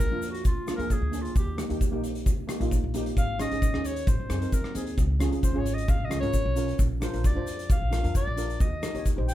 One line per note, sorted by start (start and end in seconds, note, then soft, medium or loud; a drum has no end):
0.00 0.30 A#4 loud
0.00 kick medium
0.00 closed hi-hat medium
0.00 shaker loud
0.11 0.56 F2 medium
0.11 0.45 A#3 medium
0.11 0.45 D4 medium
0.11 0.46 F4 medium
0.22 closed hi-hat medium
0.22 shaker medium
0.31 0.45 F#4 medium
0.31 closed hi-hat medium
0.45 0.74 F4 medium
0.45 kick loud
0.45 closed hi-hat medium
0.45 shaker medium
0.56 0.75 A#1 medium
0.67 0.75 A#3 medium
0.67 0.75 D4 medium
0.67 0.75 F4 medium
0.67 cross-stick medium
0.67 closed hi-hat medium
0.67 shaker medium
0.76 0.98 F2 medium
0.76 0.99 A#3 medium
0.76 1.00 D4 medium
0.76 0.94 A#4 medium
0.76 closed hi-hat medium
0.80 1.00 G#4 medium
0.90 1.23 G#4 medium
0.90 kick medium
0.90 closed hi-hat medium
0.90 shaker medium
1.02 1.30 D2 medium
1.12 1.35 A#3 medium
1.12 1.36 D4 medium
1.12 1.36 G#4 medium
1.12 closed hi-hat medium
1.12 shaker medium
1.21 1.36 F4 medium
1.21 closed hi-hat medium
1.36 1.64 D#2 medium
1.36 1.57 G4 medium
1.36 kick loud
1.36 closed hi-hat medium
1.36 shaker medium
1.57 1.65 A#3 medium
1.57 1.65 D#4 medium
1.57 1.66 G4 medium
1.57 cross-stick medium
1.57 closed hi-hat medium
1.57 shaker medium
1.69 1.89 D#2 medium
1.69 1.83 A#3 medium
1.69 1.83 D#4 medium
1.69 1.84 G4 medium
1.69 closed hi-hat medium
1.81 kick medium
1.81 closed hi-hat medium
1.81 shaker medium
1.92 2.38 A#1 medium
1.92 2.26 A#3 medium
1.92 2.26 D#4 medium
1.92 2.27 G4 medium
2.04 closed hi-hat medium
2.04 shaker medium
2.15 closed hi-hat medium
2.26 kick loud
2.26 closed hi-hat medium
2.26 shaker medium
2.38 2.57 D#2 medium
2.48 2.55 A#3 medium
2.48 2.56 D#4 medium
2.48 2.56 G4 medium
2.48 cross-stick medium
2.48 closed hi-hat medium
2.48 shaker medium
2.60 2.79 A#1 medium
2.60 2.81 A#3 medium
2.60 2.81 D#4 medium
2.60 2.82 F4 medium
2.60 closed hi-hat medium
2.71 kick medium
2.71 closed hi-hat medium
2.71 shaker medium
2.84 3.11 A#1 medium
2.94 3.17 A#3 medium
2.94 3.17 D#4 medium
2.94 3.18 G4 loud
2.94 closed hi-hat medium
2.94 shaker medium
3.06 closed hi-hat medium
3.17 3.45 G#1 medium
3.17 3.39 F5 loud
3.17 kick medium
3.17 closed hi-hat medium
3.17 shaker medium
3.39 3.46 C#4 medium
3.39 3.47 D#4 medium
3.39 3.47 G#4 medium
3.39 3.87 D#5 loud
3.39 cross-stick medium
3.39 closed hi-hat medium
3.39 shaker medium
3.51 3.70 G#1 medium
3.51 3.64 C#4 medium
3.51 3.65 D#4 medium
3.51 3.65 G#4 medium
3.51 closed hi-hat medium
3.62 kick medium
3.62 closed hi-hat medium
3.62 shaker loud
3.73 4.02 D#2 medium
3.73 4.07 C#4 medium
3.73 4.08 D#4 medium
3.73 4.08 G#4 medium
3.73 cross-stick medium
3.84 4.09 C#5 medium
3.84 closed hi-hat medium
3.84 shaker medium
3.96 closed hi-hat medium
4.07 4.17 G#1 loud
4.07 4.55 C5 medium
4.07 kick loud
4.07 closed hi-hat medium
4.07 shaker loud
4.20 4.29 G#1 medium
4.29 4.50 F#2 medium
4.29 4.37 C4 medium
4.29 4.37 D#4 medium
4.29 4.37 G#4 medium
4.29 cross-stick medium
4.29 closed hi-hat medium
4.29 shaker medium
4.41 4.62 C4 medium
4.41 4.62 D#4 medium
4.41 4.63 A#4 medium
4.41 closed hi-hat medium
4.52 4.73 F2 medium
4.52 4.76 A#4 medium
4.52 kick medium
4.52 closed hi-hat medium
4.52 shaker loud
4.64 cross-stick medium
4.74 4.96 D#2 medium
4.74 4.98 C4 medium
4.74 4.98 D#4 medium
4.74 4.98 G#4 medium
4.74 4.97 G#4 medium
4.74 closed hi-hat medium
4.74 shaker medium
4.87 closed hi-hat medium
4.97 5.26 C#2 medium
4.97 kick loud
4.97 closed hi-hat medium
4.97 shaker medium
5.19 5.27 C#4 medium
5.19 5.28 F4 medium
5.19 5.28 G#4 medium
5.19 cross-stick medium
5.19 closed hi-hat medium
5.19 shaker medium
5.31 5.52 C#2 medium
5.31 5.45 C#4 medium
5.31 5.45 F4 medium
5.31 5.46 G#4 medium
5.31 closed hi-hat medium
5.43 5.60 C5 medium
5.43 kick medium
5.43 closed hi-hat medium
5.43 shaker medium
5.53 6.02 G#1 medium
5.53 5.88 C#4 medium
5.53 5.88 F4 medium
5.53 5.89 G#4 medium
5.59 5.75 C#5 medium
5.66 closed hi-hat medium
5.66 shaker medium
5.74 5.91 D#5 medium
5.78 closed hi-hat medium
5.88 6.06 F5 loud
5.88 kick loud
5.88 closed hi-hat medium
5.88 shaker loud
6.00 6.19 C#2 medium
6.05 6.19 D#5 medium
6.09 6.17 C#4 medium
6.09 6.18 F4 medium
6.09 6.18 G#4 medium
6.09 cross-stick medium
6.09 closed hi-hat medium
6.09 shaker medium
6.20 6.42 G#1 medium
6.20 6.42 C#4 medium
6.20 6.43 F4 medium
6.20 6.43 A#4 medium
6.20 6.83 C#5 loud
6.20 closed hi-hat medium
6.33 kick medium
6.33 closed hi-hat medium
6.33 shaker medium
6.45 6.73 B1 medium
6.55 6.79 C#4 medium
6.55 6.79 F4 medium
6.55 6.80 A#4 medium
6.55 closed hi-hat medium
6.55 shaker medium
6.68 closed hi-hat medium
6.79 7.08 A#1 loud
6.79 kick loud
6.79 closed hi-hat medium
6.79 shaker medium
7.00 7.08 D4 medium
7.00 7.09 F4 medium
7.00 7.09 A#4 medium
7.00 7.27 C5 medium
7.00 cross-stick medium
7.00 closed hi-hat medium
7.00 shaker medium
7.12 7.33 A#1 medium
7.12 7.26 D4 medium
7.12 7.27 F4 medium
7.12 7.27 A#4 medium
7.12 closed hi-hat medium
7.24 7.71 D5 loud
7.24 kick medium
7.24 closed hi-hat medium
7.24 shaker medium
7.34 7.83 F2 medium
7.34 7.69 D4 medium
7.34 7.69 F4 medium
7.34 7.70 C5 medium
7.47 closed hi-hat medium
7.47 shaker medium
7.59 closed hi-hat medium
7.70 8.13 F5 medium
7.70 kick loud
7.70 closed hi-hat medium
7.70 shaker loud
7.82 8.00 A#1 medium
7.90 7.99 D4 medium
7.90 7.99 F4 medium
7.90 8.00 A#4 medium
7.90 cross-stick medium
7.90 closed hi-hat medium
7.90 shaker medium
8.03 8.23 F2 medium
8.03 8.24 D4 medium
8.03 8.24 F4 medium
8.03 8.25 A#4 medium
8.03 closed hi-hat medium
8.15 8.63 D5 loud
8.15 kick medium
8.15 closed hi-hat medium
8.15 shaker medium
8.27 8.55 A#1 medium
8.36 8.60 D4 medium
8.36 8.60 F4 medium
8.36 8.61 A#4 medium
8.36 closed hi-hat medium
8.36 shaker medium
8.50 closed hi-hat medium
8.60 8.89 D#2 medium
8.60 9.06 D#5 medium
8.60 kick loud
8.60 closed hi-hat medium
8.60 shaker medium
8.82 8.90 D#4 medium
8.82 8.90 G4 medium
8.82 8.91 A#4 medium
8.82 cross-stick medium
8.82 closed hi-hat medium
8.82 shaker medium
8.93 9.14 D#2 medium
8.93 9.08 D#4 medium
8.93 9.08 G4 medium
8.93 9.08 C#5 medium
8.93 closed hi-hat medium
9.06 kick medium
9.06 closed hi-hat medium
9.06 shaker medium
9.16 9.34 A#1 medium
9.16 9.34 D#4 medium
9.16 9.34 G4 medium
9.16 9.34 C5 medium
9.28 9.34 G5 loud
9.28 closed hi-hat medium
9.28 shaker medium